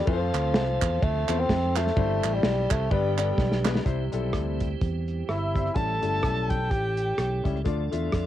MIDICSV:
0, 0, Header, 1, 7, 480
1, 0, Start_track
1, 0, Key_signature, 0, "major"
1, 0, Tempo, 473934
1, 78, Time_signature, 4, 2, 24, 8
1, 8370, End_track
2, 0, Start_track
2, 0, Title_t, "Alto saxophone"
2, 0, Program_c, 0, 65
2, 5355, Note_on_c, 0, 76, 77
2, 5826, Note_on_c, 0, 81, 92
2, 5841, Note_off_c, 0, 76, 0
2, 6581, Note_on_c, 0, 79, 76
2, 6596, Note_off_c, 0, 81, 0
2, 7546, Note_off_c, 0, 79, 0
2, 8370, End_track
3, 0, Start_track
3, 0, Title_t, "Grand piano"
3, 0, Program_c, 1, 0
3, 57, Note_on_c, 1, 57, 80
3, 67, Note_on_c, 1, 60, 69
3, 70, Note_on_c, 1, 65, 70
3, 73, Note_on_c, 1, 71, 66
3, 131, Note_on_c, 1, 72, 83
3, 141, Note_off_c, 1, 71, 0
3, 619, Note_off_c, 1, 57, 0
3, 624, Note_off_c, 1, 60, 0
3, 626, Note_off_c, 1, 65, 0
3, 656, Note_off_c, 1, 72, 0
3, 1296, Note_on_c, 1, 57, 67
3, 1298, Note_on_c, 1, 60, 62
3, 1309, Note_on_c, 1, 65, 63
3, 1312, Note_on_c, 1, 72, 79
3, 1544, Note_off_c, 1, 57, 0
3, 1545, Note_off_c, 1, 60, 0
3, 1550, Note_off_c, 1, 65, 0
3, 1552, Note_off_c, 1, 72, 0
3, 1780, Note_on_c, 1, 57, 70
3, 1782, Note_on_c, 1, 60, 59
3, 1786, Note_on_c, 1, 65, 64
3, 1793, Note_on_c, 1, 72, 79
3, 1900, Note_off_c, 1, 57, 0
3, 1901, Note_off_c, 1, 60, 0
3, 1903, Note_off_c, 1, 65, 0
3, 1906, Note_off_c, 1, 72, 0
3, 1985, Note_on_c, 1, 55, 76
3, 1989, Note_on_c, 1, 60, 72
3, 1993, Note_on_c, 1, 43, 64
3, 1995, Note_on_c, 1, 64, 70
3, 2002, Note_on_c, 1, 72, 86
3, 2541, Note_off_c, 1, 55, 0
3, 2542, Note_off_c, 1, 60, 0
3, 2545, Note_off_c, 1, 64, 0
3, 2549, Note_off_c, 1, 72, 0
3, 2704, Note_off_c, 1, 43, 0
3, 2942, Note_on_c, 1, 55, 83
3, 2949, Note_on_c, 1, 59, 72
3, 2952, Note_on_c, 1, 62, 69
3, 2953, Note_on_c, 1, 43, 67
3, 2956, Note_on_c, 1, 71, 86
3, 3164, Note_off_c, 1, 55, 0
3, 3168, Note_off_c, 1, 59, 0
3, 3170, Note_off_c, 1, 62, 0
3, 3172, Note_off_c, 1, 71, 0
3, 3211, Note_on_c, 1, 55, 70
3, 3218, Note_on_c, 1, 59, 61
3, 3220, Note_on_c, 1, 62, 66
3, 3228, Note_on_c, 1, 69, 71
3, 3460, Note_off_c, 1, 55, 0
3, 3463, Note_off_c, 1, 59, 0
3, 3465, Note_off_c, 1, 62, 0
3, 3469, Note_off_c, 1, 69, 0
3, 3664, Note_off_c, 1, 43, 0
3, 3693, Note_on_c, 1, 55, 78
3, 3698, Note_on_c, 1, 59, 72
3, 3705, Note_on_c, 1, 62, 72
3, 3708, Note_on_c, 1, 71, 89
3, 3815, Note_off_c, 1, 55, 0
3, 3818, Note_off_c, 1, 59, 0
3, 3821, Note_off_c, 1, 62, 0
3, 3823, Note_off_c, 1, 71, 0
3, 3895, Note_on_c, 1, 55, 75
3, 3901, Note_on_c, 1, 48, 64
3, 3901, Note_on_c, 1, 60, 66
3, 3904, Note_on_c, 1, 64, 72
3, 3910, Note_on_c, 1, 72, 83
3, 4058, Note_off_c, 1, 55, 0
3, 4060, Note_off_c, 1, 60, 0
3, 4062, Note_off_c, 1, 64, 0
3, 4065, Note_off_c, 1, 72, 0
3, 4171, Note_on_c, 1, 55, 76
3, 4180, Note_on_c, 1, 60, 64
3, 4184, Note_on_c, 1, 64, 68
3, 4189, Note_on_c, 1, 69, 80
3, 4619, Note_off_c, 1, 48, 0
3, 4713, Note_off_c, 1, 55, 0
3, 4717, Note_off_c, 1, 60, 0
3, 4719, Note_off_c, 1, 64, 0
3, 4722, Note_off_c, 1, 69, 0
3, 5609, Note_on_c, 1, 55, 53
3, 5616, Note_on_c, 1, 60, 50
3, 5623, Note_on_c, 1, 64, 51
3, 5628, Note_on_c, 1, 72, 57
3, 5735, Note_off_c, 1, 55, 0
3, 5738, Note_off_c, 1, 60, 0
3, 5741, Note_off_c, 1, 64, 0
3, 5744, Note_off_c, 1, 72, 0
3, 5821, Note_on_c, 1, 55, 65
3, 5824, Note_on_c, 1, 61, 59
3, 5829, Note_on_c, 1, 45, 55
3, 5832, Note_on_c, 1, 64, 62
3, 5836, Note_on_c, 1, 69, 66
3, 5982, Note_off_c, 1, 55, 0
3, 5984, Note_off_c, 1, 61, 0
3, 5987, Note_off_c, 1, 64, 0
3, 5989, Note_off_c, 1, 69, 0
3, 6089, Note_on_c, 1, 55, 62
3, 6095, Note_on_c, 1, 61, 57
3, 6100, Note_on_c, 1, 64, 57
3, 6107, Note_on_c, 1, 69, 63
3, 6545, Note_off_c, 1, 45, 0
3, 6634, Note_off_c, 1, 55, 0
3, 6637, Note_off_c, 1, 61, 0
3, 6639, Note_off_c, 1, 64, 0
3, 6643, Note_off_c, 1, 69, 0
3, 7533, Note_on_c, 1, 55, 68
3, 7537, Note_on_c, 1, 61, 59
3, 7544, Note_on_c, 1, 64, 61
3, 7550, Note_on_c, 1, 67, 69
3, 7658, Note_off_c, 1, 55, 0
3, 7660, Note_off_c, 1, 61, 0
3, 7664, Note_off_c, 1, 64, 0
3, 7667, Note_off_c, 1, 67, 0
3, 7742, Note_on_c, 1, 57, 80
3, 7748, Note_on_c, 1, 62, 69
3, 7753, Note_on_c, 1, 50, 67
3, 7753, Note_on_c, 1, 65, 71
3, 7759, Note_on_c, 1, 74, 82
3, 7905, Note_off_c, 1, 57, 0
3, 7907, Note_off_c, 1, 62, 0
3, 7910, Note_off_c, 1, 65, 0
3, 7913, Note_off_c, 1, 74, 0
3, 8015, Note_on_c, 1, 57, 68
3, 8022, Note_on_c, 1, 62, 67
3, 8025, Note_on_c, 1, 65, 67
3, 8031, Note_on_c, 1, 76, 79
3, 8370, Note_off_c, 1, 50, 0
3, 8370, Note_off_c, 1, 57, 0
3, 8370, Note_off_c, 1, 62, 0
3, 8370, Note_off_c, 1, 65, 0
3, 8370, Note_off_c, 1, 76, 0
3, 8370, End_track
4, 0, Start_track
4, 0, Title_t, "Tonewheel organ"
4, 0, Program_c, 2, 16
4, 78, Note_on_c, 2, 53, 65
4, 79, Note_on_c, 2, 60, 61
4, 80, Note_on_c, 2, 57, 64
4, 82, Note_on_c, 2, 67, 60
4, 136, Note_on_c, 2, 69, 77
4, 145, Note_off_c, 2, 67, 0
4, 1954, Note_off_c, 2, 53, 0
4, 1954, Note_off_c, 2, 60, 0
4, 1955, Note_off_c, 2, 57, 0
4, 1983, Note_off_c, 2, 69, 0
4, 1992, Note_on_c, 2, 52, 69
4, 1992, Note_on_c, 2, 60, 63
4, 1993, Note_on_c, 2, 55, 58
4, 1995, Note_on_c, 2, 66, 61
4, 2050, Note_on_c, 2, 67, 73
4, 2059, Note_off_c, 2, 66, 0
4, 2931, Note_off_c, 2, 52, 0
4, 2931, Note_off_c, 2, 60, 0
4, 2932, Note_off_c, 2, 55, 0
4, 2942, Note_off_c, 2, 67, 0
4, 2950, Note_on_c, 2, 55, 63
4, 2951, Note_on_c, 2, 59, 64
4, 2952, Note_on_c, 2, 50, 71
4, 2954, Note_on_c, 2, 67, 79
4, 3890, Note_off_c, 2, 55, 0
4, 3891, Note_off_c, 2, 50, 0
4, 3891, Note_off_c, 2, 59, 0
4, 3892, Note_off_c, 2, 67, 0
4, 3907, Note_on_c, 2, 60, 63
4, 3908, Note_on_c, 2, 55, 58
4, 3910, Note_on_c, 2, 52, 67
4, 3911, Note_on_c, 2, 67, 72
4, 5792, Note_off_c, 2, 60, 0
4, 5793, Note_off_c, 2, 55, 0
4, 5794, Note_off_c, 2, 52, 0
4, 5794, Note_off_c, 2, 67, 0
4, 5829, Note_on_c, 2, 52, 54
4, 5830, Note_on_c, 2, 61, 55
4, 5832, Note_on_c, 2, 57, 48
4, 5832, Note_on_c, 2, 67, 61
4, 7716, Note_off_c, 2, 52, 0
4, 7717, Note_off_c, 2, 57, 0
4, 7717, Note_off_c, 2, 61, 0
4, 7718, Note_off_c, 2, 67, 0
4, 7753, Note_on_c, 2, 57, 60
4, 7753, Note_on_c, 2, 69, 75
4, 7755, Note_on_c, 2, 53, 66
4, 7755, Note_on_c, 2, 62, 60
4, 8370, Note_off_c, 2, 53, 0
4, 8370, Note_off_c, 2, 57, 0
4, 8370, Note_off_c, 2, 62, 0
4, 8370, Note_off_c, 2, 69, 0
4, 8370, End_track
5, 0, Start_track
5, 0, Title_t, "Bassoon"
5, 0, Program_c, 3, 70
5, 74, Note_on_c, 3, 53, 101
5, 1033, Note_on_c, 3, 57, 102
5, 1049, Note_off_c, 3, 53, 0
5, 1412, Note_on_c, 3, 60, 114
5, 1427, Note_off_c, 3, 57, 0
5, 1781, Note_on_c, 3, 57, 101
5, 1797, Note_off_c, 3, 60, 0
5, 2365, Note_on_c, 3, 55, 97
5, 2381, Note_off_c, 3, 57, 0
5, 2742, Note_on_c, 3, 57, 91
5, 2757, Note_off_c, 3, 55, 0
5, 2945, Note_on_c, 3, 55, 85
5, 2961, Note_off_c, 3, 57, 0
5, 3701, Note_off_c, 3, 55, 0
5, 5358, Note_on_c, 3, 64, 80
5, 5831, Note_on_c, 3, 69, 99
5, 5847, Note_off_c, 3, 64, 0
5, 6788, Note_on_c, 3, 67, 81
5, 6803, Note_off_c, 3, 69, 0
5, 7546, Note_off_c, 3, 67, 0
5, 8370, End_track
6, 0, Start_track
6, 0, Title_t, "Fingered electric bass"
6, 0, Program_c, 4, 33
6, 79, Note_on_c, 4, 41, 100
6, 310, Note_off_c, 4, 41, 0
6, 346, Note_on_c, 4, 38, 78
6, 556, Note_off_c, 4, 38, 0
6, 556, Note_on_c, 4, 36, 96
6, 788, Note_off_c, 4, 36, 0
6, 832, Note_on_c, 4, 40, 94
6, 1005, Note_off_c, 4, 40, 0
6, 1039, Note_on_c, 4, 38, 88
6, 1269, Note_off_c, 4, 38, 0
6, 1304, Note_on_c, 4, 40, 97
6, 1481, Note_off_c, 4, 40, 0
6, 1508, Note_on_c, 4, 41, 92
6, 1917, Note_off_c, 4, 41, 0
6, 1992, Note_on_c, 4, 31, 110
6, 2224, Note_off_c, 4, 31, 0
6, 2263, Note_on_c, 4, 33, 88
6, 2439, Note_off_c, 4, 33, 0
6, 2469, Note_on_c, 4, 35, 92
6, 2702, Note_off_c, 4, 35, 0
6, 2748, Note_on_c, 4, 36, 91
6, 2921, Note_off_c, 4, 36, 0
6, 2952, Note_on_c, 4, 31, 105
6, 3359, Note_off_c, 4, 31, 0
6, 3424, Note_on_c, 4, 35, 97
6, 3834, Note_off_c, 4, 35, 0
6, 3911, Note_on_c, 4, 36, 93
6, 4143, Note_off_c, 4, 36, 0
6, 4180, Note_on_c, 4, 35, 79
6, 4394, Note_off_c, 4, 35, 0
6, 4394, Note_on_c, 4, 38, 84
6, 4801, Note_off_c, 4, 38, 0
6, 4877, Note_on_c, 4, 40, 81
6, 5283, Note_off_c, 4, 40, 0
6, 5351, Note_on_c, 4, 31, 73
6, 5760, Note_off_c, 4, 31, 0
6, 5832, Note_on_c, 4, 33, 78
6, 6065, Note_off_c, 4, 33, 0
6, 6106, Note_on_c, 4, 31, 75
6, 6282, Note_off_c, 4, 31, 0
6, 6319, Note_on_c, 4, 35, 74
6, 6800, Note_off_c, 4, 35, 0
6, 6800, Note_on_c, 4, 33, 81
6, 7206, Note_off_c, 4, 33, 0
6, 7275, Note_on_c, 4, 35, 79
6, 7508, Note_off_c, 4, 35, 0
6, 7549, Note_on_c, 4, 37, 76
6, 7725, Note_off_c, 4, 37, 0
6, 7758, Note_on_c, 4, 38, 92
6, 7990, Note_off_c, 4, 38, 0
6, 8032, Note_on_c, 4, 40, 74
6, 8207, Note_off_c, 4, 40, 0
6, 8240, Note_on_c, 4, 41, 84
6, 8370, Note_off_c, 4, 41, 0
6, 8370, End_track
7, 0, Start_track
7, 0, Title_t, "Drums"
7, 73, Note_on_c, 9, 51, 80
7, 77, Note_on_c, 9, 36, 117
7, 174, Note_off_c, 9, 51, 0
7, 178, Note_off_c, 9, 36, 0
7, 344, Note_on_c, 9, 51, 68
7, 354, Note_on_c, 9, 39, 77
7, 445, Note_off_c, 9, 51, 0
7, 455, Note_off_c, 9, 39, 0
7, 550, Note_on_c, 9, 38, 119
7, 562, Note_on_c, 9, 51, 74
7, 651, Note_off_c, 9, 38, 0
7, 664, Note_off_c, 9, 51, 0
7, 822, Note_on_c, 9, 51, 67
7, 829, Note_on_c, 9, 39, 104
7, 831, Note_on_c, 9, 36, 84
7, 924, Note_off_c, 9, 51, 0
7, 930, Note_off_c, 9, 39, 0
7, 932, Note_off_c, 9, 36, 0
7, 1038, Note_on_c, 9, 36, 120
7, 1038, Note_on_c, 9, 51, 75
7, 1139, Note_off_c, 9, 36, 0
7, 1139, Note_off_c, 9, 51, 0
7, 1299, Note_on_c, 9, 39, 79
7, 1299, Note_on_c, 9, 51, 60
7, 1400, Note_off_c, 9, 39, 0
7, 1400, Note_off_c, 9, 51, 0
7, 1509, Note_on_c, 9, 36, 98
7, 1513, Note_on_c, 9, 38, 116
7, 1515, Note_on_c, 9, 51, 72
7, 1610, Note_off_c, 9, 36, 0
7, 1614, Note_off_c, 9, 38, 0
7, 1616, Note_off_c, 9, 51, 0
7, 1780, Note_on_c, 9, 39, 94
7, 1787, Note_on_c, 9, 38, 34
7, 1793, Note_on_c, 9, 51, 61
7, 1881, Note_off_c, 9, 39, 0
7, 1889, Note_off_c, 9, 38, 0
7, 1890, Note_on_c, 9, 38, 37
7, 1894, Note_off_c, 9, 51, 0
7, 1989, Note_on_c, 9, 51, 78
7, 1991, Note_on_c, 9, 36, 122
7, 1992, Note_off_c, 9, 38, 0
7, 2090, Note_off_c, 9, 51, 0
7, 2092, Note_off_c, 9, 36, 0
7, 2263, Note_on_c, 9, 51, 62
7, 2266, Note_on_c, 9, 39, 85
7, 2364, Note_off_c, 9, 51, 0
7, 2368, Note_off_c, 9, 39, 0
7, 2463, Note_on_c, 9, 38, 119
7, 2475, Note_on_c, 9, 51, 84
7, 2564, Note_off_c, 9, 38, 0
7, 2576, Note_off_c, 9, 51, 0
7, 2737, Note_on_c, 9, 51, 62
7, 2742, Note_on_c, 9, 39, 97
7, 2746, Note_on_c, 9, 36, 86
7, 2838, Note_off_c, 9, 51, 0
7, 2843, Note_off_c, 9, 39, 0
7, 2847, Note_off_c, 9, 36, 0
7, 2949, Note_on_c, 9, 51, 67
7, 2952, Note_on_c, 9, 36, 111
7, 3050, Note_off_c, 9, 51, 0
7, 3053, Note_off_c, 9, 36, 0
7, 3218, Note_on_c, 9, 51, 59
7, 3223, Note_on_c, 9, 39, 76
7, 3319, Note_off_c, 9, 51, 0
7, 3324, Note_off_c, 9, 39, 0
7, 3425, Note_on_c, 9, 36, 101
7, 3429, Note_on_c, 9, 38, 59
7, 3526, Note_off_c, 9, 36, 0
7, 3530, Note_off_c, 9, 38, 0
7, 3564, Note_on_c, 9, 38, 56
7, 3665, Note_off_c, 9, 38, 0
7, 3698, Note_on_c, 9, 39, 89
7, 3702, Note_on_c, 9, 38, 91
7, 3799, Note_off_c, 9, 39, 0
7, 3803, Note_off_c, 9, 38, 0
7, 3804, Note_on_c, 9, 38, 90
7, 3905, Note_off_c, 9, 38, 0
7, 3910, Note_on_c, 9, 36, 100
7, 3910, Note_on_c, 9, 42, 83
7, 4011, Note_off_c, 9, 36, 0
7, 4011, Note_off_c, 9, 42, 0
7, 4178, Note_on_c, 9, 42, 65
7, 4279, Note_off_c, 9, 42, 0
7, 4387, Note_on_c, 9, 37, 99
7, 4394, Note_on_c, 9, 36, 75
7, 4399, Note_on_c, 9, 42, 78
7, 4488, Note_off_c, 9, 37, 0
7, 4495, Note_off_c, 9, 36, 0
7, 4500, Note_off_c, 9, 42, 0
7, 4662, Note_on_c, 9, 42, 66
7, 4669, Note_on_c, 9, 36, 74
7, 4763, Note_off_c, 9, 42, 0
7, 4770, Note_off_c, 9, 36, 0
7, 4873, Note_on_c, 9, 42, 77
7, 4875, Note_on_c, 9, 36, 103
7, 4975, Note_off_c, 9, 42, 0
7, 4977, Note_off_c, 9, 36, 0
7, 5141, Note_on_c, 9, 42, 55
7, 5243, Note_off_c, 9, 42, 0
7, 5354, Note_on_c, 9, 37, 98
7, 5356, Note_on_c, 9, 42, 73
7, 5455, Note_off_c, 9, 37, 0
7, 5457, Note_off_c, 9, 42, 0
7, 5625, Note_on_c, 9, 36, 82
7, 5628, Note_on_c, 9, 42, 60
7, 5727, Note_off_c, 9, 36, 0
7, 5729, Note_off_c, 9, 42, 0
7, 5732, Note_on_c, 9, 37, 29
7, 5829, Note_on_c, 9, 42, 79
7, 5833, Note_off_c, 9, 37, 0
7, 5833, Note_on_c, 9, 36, 99
7, 5930, Note_off_c, 9, 42, 0
7, 5934, Note_off_c, 9, 36, 0
7, 6104, Note_on_c, 9, 42, 67
7, 6205, Note_off_c, 9, 42, 0
7, 6310, Note_on_c, 9, 37, 99
7, 6317, Note_on_c, 9, 36, 82
7, 6322, Note_on_c, 9, 42, 88
7, 6411, Note_off_c, 9, 37, 0
7, 6419, Note_off_c, 9, 36, 0
7, 6424, Note_off_c, 9, 42, 0
7, 6585, Note_on_c, 9, 42, 63
7, 6592, Note_on_c, 9, 36, 78
7, 6687, Note_off_c, 9, 42, 0
7, 6693, Note_off_c, 9, 36, 0
7, 6797, Note_on_c, 9, 42, 71
7, 6798, Note_on_c, 9, 36, 103
7, 6898, Note_off_c, 9, 42, 0
7, 6899, Note_off_c, 9, 36, 0
7, 7062, Note_on_c, 9, 42, 56
7, 7163, Note_off_c, 9, 42, 0
7, 7273, Note_on_c, 9, 37, 102
7, 7275, Note_on_c, 9, 42, 77
7, 7374, Note_off_c, 9, 37, 0
7, 7376, Note_off_c, 9, 42, 0
7, 7545, Note_on_c, 9, 37, 26
7, 7549, Note_on_c, 9, 36, 78
7, 7550, Note_on_c, 9, 42, 60
7, 7646, Note_off_c, 9, 37, 0
7, 7650, Note_off_c, 9, 36, 0
7, 7651, Note_off_c, 9, 42, 0
7, 7655, Note_on_c, 9, 37, 30
7, 7753, Note_on_c, 9, 42, 83
7, 7756, Note_on_c, 9, 36, 93
7, 7757, Note_off_c, 9, 37, 0
7, 7854, Note_off_c, 9, 42, 0
7, 7857, Note_off_c, 9, 36, 0
7, 8027, Note_on_c, 9, 42, 69
7, 8128, Note_off_c, 9, 42, 0
7, 8228, Note_on_c, 9, 37, 95
7, 8239, Note_on_c, 9, 36, 75
7, 8241, Note_on_c, 9, 42, 80
7, 8330, Note_off_c, 9, 37, 0
7, 8340, Note_off_c, 9, 36, 0
7, 8342, Note_off_c, 9, 42, 0
7, 8370, End_track
0, 0, End_of_file